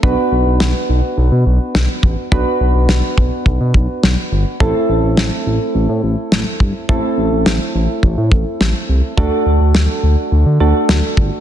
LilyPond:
<<
  \new Staff \with { instrumentName = "Synth keys" } { \time 4/4 \key a \dorian \tempo 4 = 105 <b d' fis' b'>1 | <b d' fis' b'>1 | <a c' e' a'>1 | <a c' e' a'>1 |
<a d' fis' a'>2~ <a d' fis' a'>8 <a d' fis' a'>4. | }
  \new Staff \with { instrumentName = "Analog synth bass" } { \clef bass \time 4/4 \key a \dorian b,,16 r16 b,,16 b,,16 b,,16 r16 b,,16 r16 b,,16 b,16 b,,16 r16 b,,16 r16 a,,16 r16 | b,,16 r16 b,,16 b,,16 b,,16 r16 b,,16 r16 b,,16 b,16 b,,16 r16 b,,16 r16 g,,16 r16 | a,,16 r16 a,,16 a,,16 a,,16 r16 a,,16 r16 a,,16 a,16 a,,16 r16 a,,16 r16 g,,16 r16 | a,,16 r16 a,,16 a,,16 a,,16 r16 a,,16 r16 a,,16 a,16 a,,16 r16 a,,16 r16 c,16 r16 |
d,16 r16 d,16 d,16 d,16 r16 d,16 r16 d,16 d16 d,16 r16 d,16 r16 g,,16 r16 | }
  \new DrumStaff \with { instrumentName = "Drums" } \drummode { \time 4/4 bd4 sn4 r4 sn8 bd8 | bd4 sn8 bd8 bd8 bd8 sn4 | bd4 sn4 r4 sn8 bd8 | bd4 sn4 bd8 bd8 sn4 |
bd4 sn4 r4 sn8 bd8 | }
>>